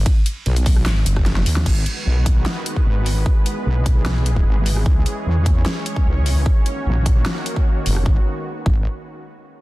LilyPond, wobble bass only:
\new Staff \with { instrumentName = "Wobble bass" } { \clef bass \time 4/4 \key gis \minor \tempo 4 = 150 r4 b,,4 gis,,8 fis,,4 dis,8 | gis,,8 r8 b,,4 r4 gis,,4 | r4 b,,4 b,,4 gis,,4 | cis,8 r8 e,4 r4 cis,4 |
r4 ais,,4 r4. fis,,8 | gis,,8 r4 gis,,8 r2 | }